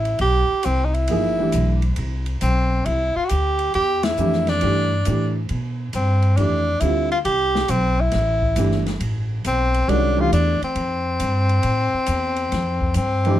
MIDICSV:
0, 0, Header, 1, 6, 480
1, 0, Start_track
1, 0, Tempo, 439560
1, 1194, Time_signature, 4, 2, 24, 8
1, 14628, End_track
2, 0, Start_track
2, 0, Title_t, "Tenor saxophone"
2, 0, Program_c, 0, 66
2, 0, Note_on_c, 0, 64, 77
2, 223, Note_off_c, 0, 64, 0
2, 230, Note_on_c, 0, 67, 91
2, 711, Note_on_c, 0, 60, 80
2, 728, Note_off_c, 0, 67, 0
2, 926, Note_on_c, 0, 63, 60
2, 942, Note_off_c, 0, 60, 0
2, 1028, Note_on_c, 0, 64, 92
2, 1044, Note_off_c, 0, 63, 0
2, 1998, Note_off_c, 0, 64, 0
2, 2645, Note_on_c, 0, 60, 76
2, 3120, Note_on_c, 0, 64, 86
2, 3136, Note_off_c, 0, 60, 0
2, 3452, Note_on_c, 0, 65, 86
2, 3469, Note_off_c, 0, 64, 0
2, 3547, Note_on_c, 0, 66, 66
2, 3564, Note_off_c, 0, 65, 0
2, 3596, Note_on_c, 0, 67, 86
2, 3612, Note_off_c, 0, 66, 0
2, 4080, Note_off_c, 0, 67, 0
2, 4093, Note_on_c, 0, 67, 98
2, 4410, Note_on_c, 0, 64, 82
2, 4427, Note_off_c, 0, 67, 0
2, 4901, Note_on_c, 0, 62, 83
2, 4917, Note_off_c, 0, 64, 0
2, 5856, Note_off_c, 0, 62, 0
2, 6503, Note_on_c, 0, 60, 75
2, 6955, Note_on_c, 0, 62, 82
2, 6971, Note_off_c, 0, 60, 0
2, 7431, Note_on_c, 0, 64, 83
2, 7448, Note_off_c, 0, 62, 0
2, 7763, Note_off_c, 0, 64, 0
2, 7770, Note_on_c, 0, 65, 82
2, 7839, Note_off_c, 0, 65, 0
2, 7917, Note_on_c, 0, 67, 91
2, 8409, Note_on_c, 0, 60, 85
2, 8425, Note_off_c, 0, 67, 0
2, 8743, Note_on_c, 0, 64, 88
2, 8759, Note_off_c, 0, 60, 0
2, 9693, Note_off_c, 0, 64, 0
2, 10342, Note_on_c, 0, 60, 86
2, 10801, Note_on_c, 0, 62, 86
2, 10817, Note_off_c, 0, 60, 0
2, 11141, Note_on_c, 0, 65, 89
2, 11157, Note_off_c, 0, 62, 0
2, 11275, Note_off_c, 0, 65, 0
2, 11282, Note_on_c, 0, 62, 81
2, 11582, Note_off_c, 0, 62, 0
2, 11620, Note_on_c, 0, 60, 82
2, 14115, Note_off_c, 0, 60, 0
2, 14159, Note_on_c, 0, 60, 75
2, 14628, Note_off_c, 0, 60, 0
2, 14628, End_track
3, 0, Start_track
3, 0, Title_t, "Upright piano"
3, 0, Program_c, 1, 0
3, 1196, Note_on_c, 1, 53, 52
3, 1202, Note_on_c, 1, 58, 50
3, 1205, Note_on_c, 1, 63, 46
3, 1207, Note_on_c, 1, 68, 59
3, 1489, Note_off_c, 1, 53, 0
3, 1492, Note_off_c, 1, 58, 0
3, 1494, Note_off_c, 1, 63, 0
3, 1495, Note_off_c, 1, 68, 0
3, 1514, Note_on_c, 1, 52, 54
3, 1522, Note_on_c, 1, 57, 52
3, 1528, Note_on_c, 1, 62, 50
3, 1535, Note_on_c, 1, 67, 58
3, 1934, Note_off_c, 1, 52, 0
3, 1938, Note_off_c, 1, 57, 0
3, 1942, Note_off_c, 1, 62, 0
3, 1945, Note_off_c, 1, 67, 0
3, 4568, Note_on_c, 1, 52, 61
3, 4575, Note_on_c, 1, 57, 53
3, 4581, Note_on_c, 1, 67, 65
3, 4584, Note_on_c, 1, 62, 53
3, 5028, Note_off_c, 1, 52, 0
3, 5036, Note_off_c, 1, 57, 0
3, 5039, Note_off_c, 1, 62, 0
3, 5045, Note_on_c, 1, 52, 55
3, 5048, Note_off_c, 1, 67, 0
3, 5053, Note_on_c, 1, 57, 54
3, 5056, Note_on_c, 1, 62, 49
3, 5064, Note_on_c, 1, 67, 61
3, 5338, Note_off_c, 1, 52, 0
3, 5342, Note_off_c, 1, 57, 0
3, 5344, Note_off_c, 1, 62, 0
3, 5348, Note_off_c, 1, 67, 0
3, 5534, Note_on_c, 1, 52, 46
3, 5537, Note_on_c, 1, 57, 44
3, 5543, Note_on_c, 1, 62, 45
3, 5551, Note_on_c, 1, 67, 51
3, 5823, Note_off_c, 1, 52, 0
3, 5825, Note_off_c, 1, 57, 0
3, 5827, Note_off_c, 1, 62, 0
3, 5831, Note_off_c, 1, 67, 0
3, 6962, Note_on_c, 1, 52, 47
3, 6973, Note_on_c, 1, 57, 44
3, 6973, Note_on_c, 1, 62, 49
3, 6979, Note_on_c, 1, 67, 52
3, 7256, Note_off_c, 1, 52, 0
3, 7262, Note_off_c, 1, 57, 0
3, 7262, Note_off_c, 1, 62, 0
3, 7265, Note_off_c, 1, 67, 0
3, 7444, Note_on_c, 1, 50, 51
3, 7451, Note_on_c, 1, 55, 50
3, 7455, Note_on_c, 1, 60, 45
3, 7466, Note_on_c, 1, 65, 55
3, 7737, Note_off_c, 1, 50, 0
3, 7741, Note_off_c, 1, 55, 0
3, 7743, Note_off_c, 1, 60, 0
3, 7748, Note_off_c, 1, 65, 0
3, 9358, Note_on_c, 1, 52, 58
3, 9369, Note_on_c, 1, 57, 56
3, 9370, Note_on_c, 1, 62, 52
3, 9370, Note_on_c, 1, 67, 65
3, 9652, Note_off_c, 1, 52, 0
3, 9658, Note_off_c, 1, 57, 0
3, 9658, Note_off_c, 1, 62, 0
3, 9658, Note_off_c, 1, 67, 0
3, 10789, Note_on_c, 1, 51, 65
3, 10795, Note_on_c, 1, 56, 58
3, 10802, Note_on_c, 1, 61, 59
3, 10805, Note_on_c, 1, 66, 72
3, 11086, Note_off_c, 1, 51, 0
3, 11089, Note_off_c, 1, 56, 0
3, 11092, Note_off_c, 1, 61, 0
3, 11094, Note_off_c, 1, 66, 0
3, 11106, Note_on_c, 1, 52, 63
3, 11115, Note_on_c, 1, 57, 61
3, 11120, Note_on_c, 1, 62, 59
3, 11127, Note_on_c, 1, 67, 71
3, 11528, Note_off_c, 1, 52, 0
3, 11533, Note_off_c, 1, 57, 0
3, 11535, Note_off_c, 1, 62, 0
3, 11539, Note_off_c, 1, 67, 0
3, 14473, Note_on_c, 1, 41, 58
3, 14481, Note_on_c, 1, 52, 61
3, 14489, Note_on_c, 1, 57, 55
3, 14492, Note_on_c, 1, 62, 58
3, 14495, Note_on_c, 1, 67, 73
3, 14628, Note_off_c, 1, 41, 0
3, 14628, Note_off_c, 1, 52, 0
3, 14628, Note_off_c, 1, 57, 0
3, 14628, Note_off_c, 1, 62, 0
3, 14628, Note_off_c, 1, 67, 0
3, 14628, End_track
4, 0, Start_track
4, 0, Title_t, "Upright bass"
4, 0, Program_c, 2, 32
4, 0, Note_on_c, 2, 33, 75
4, 209, Note_off_c, 2, 33, 0
4, 215, Note_on_c, 2, 35, 75
4, 526, Note_off_c, 2, 35, 0
4, 717, Note_on_c, 2, 36, 80
4, 1182, Note_off_c, 2, 36, 0
4, 1197, Note_on_c, 2, 31, 71
4, 1663, Note_off_c, 2, 31, 0
4, 1680, Note_on_c, 2, 35, 83
4, 2146, Note_off_c, 2, 35, 0
4, 2157, Note_on_c, 2, 36, 78
4, 2625, Note_off_c, 2, 36, 0
4, 2639, Note_on_c, 2, 35, 88
4, 3107, Note_off_c, 2, 35, 0
4, 3123, Note_on_c, 2, 36, 76
4, 3426, Note_off_c, 2, 36, 0
4, 3613, Note_on_c, 2, 38, 81
4, 4075, Note_off_c, 2, 38, 0
4, 4095, Note_on_c, 2, 40, 78
4, 4556, Note_off_c, 2, 40, 0
4, 4564, Note_on_c, 2, 41, 86
4, 5030, Note_off_c, 2, 41, 0
4, 5057, Note_on_c, 2, 43, 68
4, 5517, Note_off_c, 2, 43, 0
4, 5539, Note_on_c, 2, 45, 72
4, 5998, Note_off_c, 2, 45, 0
4, 6009, Note_on_c, 2, 47, 78
4, 6473, Note_off_c, 2, 47, 0
4, 6481, Note_on_c, 2, 43, 77
4, 6948, Note_off_c, 2, 43, 0
4, 6967, Note_on_c, 2, 41, 68
4, 7431, Note_off_c, 2, 41, 0
4, 7440, Note_on_c, 2, 38, 81
4, 7907, Note_off_c, 2, 38, 0
4, 7919, Note_on_c, 2, 36, 71
4, 8386, Note_off_c, 2, 36, 0
4, 8397, Note_on_c, 2, 35, 87
4, 8865, Note_off_c, 2, 35, 0
4, 8883, Note_on_c, 2, 33, 75
4, 9343, Note_off_c, 2, 33, 0
4, 9350, Note_on_c, 2, 31, 80
4, 9820, Note_off_c, 2, 31, 0
4, 9827, Note_on_c, 2, 33, 78
4, 10298, Note_off_c, 2, 33, 0
4, 10317, Note_on_c, 2, 35, 75
4, 10783, Note_off_c, 2, 35, 0
4, 10788, Note_on_c, 2, 36, 75
4, 11257, Note_off_c, 2, 36, 0
4, 11269, Note_on_c, 2, 40, 84
4, 11575, Note_off_c, 2, 40, 0
4, 11743, Note_on_c, 2, 41, 72
4, 12213, Note_off_c, 2, 41, 0
4, 12233, Note_on_c, 2, 43, 82
4, 12698, Note_off_c, 2, 43, 0
4, 12710, Note_on_c, 2, 45, 69
4, 13014, Note_off_c, 2, 45, 0
4, 13189, Note_on_c, 2, 40, 81
4, 13655, Note_off_c, 2, 40, 0
4, 13673, Note_on_c, 2, 41, 78
4, 14137, Note_off_c, 2, 41, 0
4, 14146, Note_on_c, 2, 43, 84
4, 14613, Note_off_c, 2, 43, 0
4, 14628, End_track
5, 0, Start_track
5, 0, Title_t, "Muted upright bass strokes"
5, 544, Note_on_c, 9, 29, 35
5, 654, Note_off_c, 9, 29, 0
5, 3451, Note_on_c, 9, 29, 35
5, 3560, Note_off_c, 9, 29, 0
5, 11595, Note_on_c, 9, 29, 35
5, 11705, Note_off_c, 9, 29, 0
5, 13036, Note_on_c, 9, 29, 35
5, 13145, Note_off_c, 9, 29, 0
5, 14628, End_track
6, 0, Start_track
6, 0, Title_t, "Drums"
6, 55, Note_on_c, 9, 51, 40
6, 164, Note_off_c, 9, 51, 0
6, 203, Note_on_c, 9, 51, 56
6, 313, Note_off_c, 9, 51, 0
6, 686, Note_on_c, 9, 44, 48
6, 686, Note_on_c, 9, 51, 63
6, 795, Note_off_c, 9, 44, 0
6, 795, Note_off_c, 9, 51, 0
6, 1031, Note_on_c, 9, 51, 39
6, 1140, Note_off_c, 9, 51, 0
6, 1174, Note_on_c, 9, 51, 62
6, 1283, Note_off_c, 9, 51, 0
6, 1662, Note_on_c, 9, 44, 56
6, 1662, Note_on_c, 9, 51, 60
6, 1771, Note_off_c, 9, 44, 0
6, 1771, Note_off_c, 9, 51, 0
6, 1988, Note_on_c, 9, 51, 38
6, 2098, Note_off_c, 9, 51, 0
6, 2140, Note_on_c, 9, 51, 60
6, 2250, Note_off_c, 9, 51, 0
6, 2467, Note_on_c, 9, 51, 39
6, 2577, Note_off_c, 9, 51, 0
6, 2631, Note_on_c, 9, 44, 58
6, 2631, Note_on_c, 9, 51, 60
6, 2740, Note_off_c, 9, 44, 0
6, 2740, Note_off_c, 9, 51, 0
6, 3118, Note_on_c, 9, 51, 58
6, 3228, Note_off_c, 9, 51, 0
6, 3596, Note_on_c, 9, 44, 50
6, 3596, Note_on_c, 9, 51, 59
6, 3705, Note_off_c, 9, 44, 0
6, 3705, Note_off_c, 9, 51, 0
6, 3917, Note_on_c, 9, 51, 44
6, 4026, Note_off_c, 9, 51, 0
6, 4082, Note_on_c, 9, 51, 51
6, 4191, Note_off_c, 9, 51, 0
6, 4402, Note_on_c, 9, 51, 66
6, 4407, Note_on_c, 9, 38, 69
6, 4511, Note_off_c, 9, 51, 0
6, 4516, Note_off_c, 9, 38, 0
6, 4556, Note_on_c, 9, 44, 51
6, 4665, Note_off_c, 9, 44, 0
6, 4725, Note_on_c, 9, 38, 26
6, 4834, Note_off_c, 9, 38, 0
6, 4880, Note_on_c, 9, 51, 39
6, 4882, Note_on_c, 9, 38, 39
6, 4990, Note_off_c, 9, 51, 0
6, 4991, Note_off_c, 9, 38, 0
6, 5033, Note_on_c, 9, 51, 51
6, 5142, Note_off_c, 9, 51, 0
6, 5517, Note_on_c, 9, 44, 60
6, 5517, Note_on_c, 9, 51, 56
6, 5626, Note_off_c, 9, 44, 0
6, 5626, Note_off_c, 9, 51, 0
6, 5994, Note_on_c, 9, 51, 53
6, 6103, Note_off_c, 9, 51, 0
6, 6475, Note_on_c, 9, 44, 46
6, 6475, Note_on_c, 9, 51, 57
6, 6584, Note_off_c, 9, 44, 0
6, 6584, Note_off_c, 9, 51, 0
6, 6796, Note_on_c, 9, 51, 39
6, 6905, Note_off_c, 9, 51, 0
6, 6959, Note_on_c, 9, 51, 53
6, 7069, Note_off_c, 9, 51, 0
6, 7431, Note_on_c, 9, 44, 49
6, 7431, Note_on_c, 9, 51, 56
6, 7540, Note_off_c, 9, 44, 0
6, 7540, Note_off_c, 9, 51, 0
6, 7769, Note_on_c, 9, 51, 38
6, 7879, Note_off_c, 9, 51, 0
6, 7916, Note_on_c, 9, 51, 60
6, 8025, Note_off_c, 9, 51, 0
6, 8248, Note_on_c, 9, 38, 52
6, 8357, Note_off_c, 9, 38, 0
6, 8389, Note_on_c, 9, 44, 58
6, 8389, Note_on_c, 9, 51, 58
6, 8498, Note_off_c, 9, 44, 0
6, 8498, Note_off_c, 9, 51, 0
6, 8862, Note_on_c, 9, 51, 57
6, 8867, Note_on_c, 9, 38, 37
6, 8971, Note_off_c, 9, 51, 0
6, 8976, Note_off_c, 9, 38, 0
6, 9196, Note_on_c, 9, 36, 46
6, 9305, Note_off_c, 9, 36, 0
6, 9346, Note_on_c, 9, 44, 56
6, 9346, Note_on_c, 9, 51, 64
6, 9455, Note_off_c, 9, 44, 0
6, 9455, Note_off_c, 9, 51, 0
6, 9516, Note_on_c, 9, 38, 25
6, 9625, Note_off_c, 9, 38, 0
6, 9680, Note_on_c, 9, 51, 42
6, 9682, Note_on_c, 9, 38, 41
6, 9789, Note_off_c, 9, 51, 0
6, 9791, Note_off_c, 9, 38, 0
6, 9833, Note_on_c, 9, 51, 59
6, 9942, Note_off_c, 9, 51, 0
6, 10314, Note_on_c, 9, 44, 50
6, 10314, Note_on_c, 9, 51, 60
6, 10423, Note_off_c, 9, 44, 0
6, 10423, Note_off_c, 9, 51, 0
6, 10640, Note_on_c, 9, 51, 45
6, 10749, Note_off_c, 9, 51, 0
6, 10800, Note_on_c, 9, 51, 54
6, 10909, Note_off_c, 9, 51, 0
6, 11276, Note_on_c, 9, 44, 58
6, 11276, Note_on_c, 9, 51, 61
6, 11385, Note_off_c, 9, 44, 0
6, 11385, Note_off_c, 9, 51, 0
6, 11602, Note_on_c, 9, 51, 42
6, 11711, Note_off_c, 9, 51, 0
6, 11745, Note_on_c, 9, 51, 52
6, 11854, Note_off_c, 9, 51, 0
6, 12226, Note_on_c, 9, 44, 49
6, 12226, Note_on_c, 9, 51, 65
6, 12335, Note_off_c, 9, 44, 0
6, 12335, Note_off_c, 9, 51, 0
6, 12549, Note_on_c, 9, 51, 43
6, 12658, Note_off_c, 9, 51, 0
6, 12698, Note_on_c, 9, 51, 62
6, 12807, Note_off_c, 9, 51, 0
6, 13173, Note_on_c, 9, 44, 54
6, 13173, Note_on_c, 9, 51, 63
6, 13283, Note_off_c, 9, 44, 0
6, 13283, Note_off_c, 9, 51, 0
6, 13501, Note_on_c, 9, 51, 43
6, 13610, Note_off_c, 9, 51, 0
6, 13670, Note_on_c, 9, 51, 55
6, 13675, Note_on_c, 9, 38, 34
6, 13779, Note_off_c, 9, 51, 0
6, 13785, Note_off_c, 9, 38, 0
6, 13993, Note_on_c, 9, 36, 47
6, 14102, Note_off_c, 9, 36, 0
6, 14132, Note_on_c, 9, 44, 50
6, 14132, Note_on_c, 9, 51, 64
6, 14242, Note_off_c, 9, 44, 0
6, 14242, Note_off_c, 9, 51, 0
6, 14465, Note_on_c, 9, 51, 39
6, 14575, Note_off_c, 9, 51, 0
6, 14628, End_track
0, 0, End_of_file